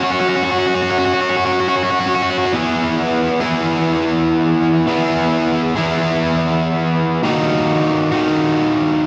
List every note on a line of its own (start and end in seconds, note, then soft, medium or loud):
0.03 0.11 C#4 soft
0.03 0.11 F#4 medium
0.11 0.18 C#4 medium
0.11 0.20 F#4 medium
0.20 0.28 C#4 medium
0.20 0.28 F#4 medium
0.28 0.35 C#4 soft
0.28 0.35 F#4 medium
0.35 0.42 C#4 medium
0.35 0.44 F#4 medium
0.42 0.50 C#4 soft
0.42 0.50 F#4 medium
0.50 0.58 C#4 medium
0.50 0.58 F#4 medium
0.58 0.66 C#4 medium
0.58 0.66 F#4 medium
0.67 0.74 C#4 medium
0.67 0.74 F#4 medium
0.74 0.82 C#4 soft
0.74 0.82 F#4 medium
0.82 0.90 C#4 medium
0.82 0.90 F#4 medium
0.91 0.98 C#4 medium
0.91 0.98 F#4 medium
0.99 1.06 C#4 medium
0.99 1.05 F#4 medium
1.06 1.14 C#4 medium
1.06 1.13 F#4 medium
1.14 1.22 C#4 medium
1.14 1.21 F#4 medium
1.21 1.29 C#4 medium
1.21 1.29 F#4 medium
1.29 1.36 C#4 medium
1.29 1.37 F#4 medium
1.36 1.44 C#4 soft
1.36 1.45 F#4 medium
1.45 1.52 C#4 medium
1.45 1.53 F#4 medium
1.52 1.60 C#4 medium
1.52 1.60 F#4 medium
1.60 1.68 C#4 medium
1.60 1.68 F#4 medium
1.68 1.75 C#4 soft
1.68 1.76 F#4 medium
1.76 1.84 C#4 medium
1.76 1.83 F#4 medium
1.83 1.91 C#4 soft
1.83 1.90 F#4 medium
1.90 1.99 C#4 medium
1.90 1.98 F#4 medium
2.00 2.06 C#4 medium
2.00 2.08 F#4 medium
2.06 2.14 C#4 medium
2.06 2.15 F#4 medium
2.14 2.22 C#4 soft
2.14 2.22 F#4 medium
2.23 2.30 C#4 medium
2.23 2.30 F#4 medium
2.31 2.38 C#4 soft
2.31 2.38 F#4 medium
2.38 2.45 C#4 medium
2.38 2.46 F#4 medium
2.46 2.54 C#4 soft
2.46 2.54 F#4 medium
2.53 3.43 E3 medium
2.53 3.42 B3 medium
2.53 3.41 E4 loud
2.53 3.40 G#4 loud
3.40 4.86 E3 medium
3.40 4.87 B3 medium
3.40 4.86 E4 medium
3.40 4.86 G#4 loud
4.87 5.74 E3 medium
4.87 5.74 B3 medium
4.87 5.75 E4 loud
4.87 5.74 G#4 loud
5.76 7.22 E3 medium
5.76 7.22 B3 medium
5.76 7.22 E4 medium
5.76 7.21 G#4 medium
7.23 8.10 D#3 loud
7.23 8.13 A#3 loud
7.23 8.12 D#4 loud
7.23 8.11 F#4 medium
8.11 9.07 D#3 medium
8.11 9.07 A#3 medium
8.11 9.07 D#4 medium
8.11 9.07 F#4 medium